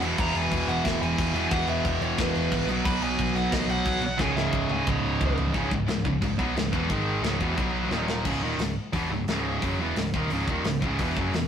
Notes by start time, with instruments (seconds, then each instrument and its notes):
0.00 picked electric bass E1, distorted electric guitar E2 B2 E3, crash
0.17 picked electric bass E1, distorted electric guitar E2 B2 E3, lead electric guitar A#5, kick, crash
0.35 picked electric bass E1, lead electric guitar G#5, crash
0.51 picked electric bass E1, distorted electric guitar E2 B2 E3, kick, crash
0.68 picked electric bass E1, distorted electric guitar E2 B2 E3, lead electric guitar F#5, crash
0.84 picked electric bass E1, distorted electric guitar E2 B2 E3, lead electric guitar E5, kick, snare, crash
1.02 picked electric bass E1, lead electric guitar G#5, crash
1.18 picked electric bass E1, distorted electric guitar E2 B2 E3, kick, crash
1.33 picked electric bass E1, distorted electric guitar E2 B2 E3, crash
1.50 picked electric bass E1, distorted electric guitar E2 B2 E3, lead electric guitar F#5, kick, crash
1.67 picked electric bass E1, lead electric guitar E5, crash
1.83 picked electric bass E1, distorted electric guitar E2 B2 E3, kick, crash
1.99 picked electric bass E1, distorted electric guitar E2 B2 E3, lead electric guitar C#5, crash
2.16 picked electric bass E1, distorted electric guitar E2 B2 E3, kick, snare, crash
2.20 lead electric guitar B4
2.35 picked electric bass E1, crash
2.49 picked electric bass C#1, distorted electric guitar E2 B2 E3, kick, crash
2.67 picked electric bass B1, distorted electric guitar B2 F#3 B3, crash
2.84 picked electric bass B1, distorted electric guitar B2 F#3 B3, lead electric guitar B5, kick, crash
3.01 picked electric bass B1, lead electric guitar G#5, crash
3.17 picked electric bass B1, distorted electric guitar B2 F#3 B3, kick, crash
3.34 picked electric bass B1, distorted electric guitar B2 F#3 B3, lead electric guitar F#5, crash
3.50 picked electric bass B1, distorted electric guitar B2 F#3 B3, lead electric guitar D#5, kick, snare, crash
3.68 picked electric bass B1, lead electric guitar F#5, crash
3.84 picked electric bass B1, distorted electric guitar B2 F#3 B3, kick, crash
4.01 picked electric bass B1, distorted electric guitar B2 F#3 B3, crash
4.17 picked electric bass C#1, distorted electric guitar C#2 G#2 C#3, lead electric guitar G#5, kick, snare
4.35 picked electric bass C#1, lead electric guitar E5, snare
4.51 picked electric bass C#1, distorted electric guitar C#2 G#2 C#3, kick
4.68 picked electric bass C#1, distorted electric guitar C#2 G#2 C#3, lead electric guitar G#5, high tom
4.86 picked electric bass C#1, distorted electric guitar C#2 G#2 C#3, lead electric guitar C#5, kick, mid tom
5.04 picked electric bass C#1
5.19 picked electric bass C#1, distorted electric guitar C#2 G#2 C#3, kick, floor tom
5.37 picked electric bass C#1, distorted electric guitar C#2 G#2 C#3, floor tom
5.52 picked electric bass C#1, distorted electric guitar C#2 G#2 C#3, kick, crash
5.70 picked electric bass C#1, distorted electric guitar C#2 G#2, kick
5.87 picked electric bass C#1, distorted electric guitar C#2 G#2, snare, crash
6.05 picked electric bass C#1, distorted electric guitar C#2 G#2, kick
6.21 picked electric bass C#1, distorted electric guitar C#2 G#2, kick, crash
6.38 picked electric bass B1, distorted electric guitar B2 F#3 B3, kick
6.55 picked electric bass C#1, distorted electric guitar C#2 G#2, snare, crash
6.72 picked electric bass E1, distorted electric guitar E2 B2 E3, kick
6.89 picked electric bass G#1, distorted electric guitar G#2 D#3 G#3, kick, crash
7.22 picked electric bass C#1, distorted electric guitar C#2 G#2 C#3, snare, crash
7.40 picked electric bass E1, distorted electric guitar E2 B2 E3, kick
7.55 picked electric bass B1, distorted electric guitar B2 F#3 B3, kick, crash
7.89 picked electric bass D#1, distorted electric guitar D#2 A#2 D#3, snare
8.08 snare
8.25 picked electric bass C#1, distorted electric guitar C#2 G#2 C#3, kick, crash
8.41 picked electric bass D#1, distorted electric guitar D#2 A#2 D#3
8.57 picked electric bass C#1, distorted electric guitar C#2 G#2, snare, open hi-hat
8.93 picked electric bass E1, distorted electric guitar E2 B2 E3, kick, open hi-hat
9.09 picked electric bass C#1, distorted electric guitar C#2 G#2
9.26 picked electric bass C#1, distorted electric guitar C#2 G#2, snare, open hi-hat
9.30 distorted electric guitar C#3
9.61 picked electric bass F#1, distorted electric guitar F#2 C#3 F#3, kick, open hi-hat
9.78 picked electric bass E1, distorted electric guitar E2 B2
9.82 distorted electric guitar E3
9.95 picked electric bass C#1, distorted electric guitar C#2 G#2, snare, open hi-hat
10.13 picked electric bass D#1, distorted electric guitar D#2 A#2 D#3, kick
10.30 picked electric bass C#1, distorted electric guitar C#2 G#2 C#3, open hi-hat
10.47 picked electric bass D#1, distorted electric guitar D#2 A#2 D#3, kick
10.64 picked electric bass C#1, distorted electric guitar C#2 G#2, snare, open hi-hat
10.81 picked electric bass C#1, distorted electric guitar C#2 G#2 C#3, kick
10.98 picked electric bass E1, distorted electric guitar E2 B2 E3, kick, open hi-hat
11.16 picked electric bass F#1, distorted electric guitar F#2 C#3 F#3, kick
11.32 picked electric bass E1, distorted electric guitar E2 B2, snare, open hi-hat